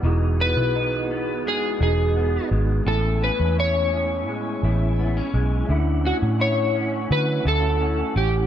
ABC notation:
X:1
M:4/4
L:1/16
Q:1/4=85
K:E
V:1 name="Electric slide guitar"
z2 B6 G2 G4 z2 | A2 B2 c8- c2 z2 | z2 F2 c4 B2 A4 =G2 |]
V:2 name="Tonewheel organ"
[B,DFG]16 | [B,CEg]16 | [A,CEf]16 |]
V:3 name="Clean electric guitar"
[E,D]2 B,2 D2 B,2 G,2 D2 B,2 G,2 | [A,,E]2 C2 E2 C2 G,2 E2 B, C G,2 | [=D,E]2 C2 E2 C2 F,2 E2 C4 |]
V:4 name="Fingered electric bass" clef=bass
E,,,3 B,,,4- B,,, E,,2 E,,,4 G,,,2 | A,,,3 E,,4- E,, A,,2 A,,,4 B,,,2 | =D,,3 A,,4- A,, =D,2 D,,4 A,,,2 |]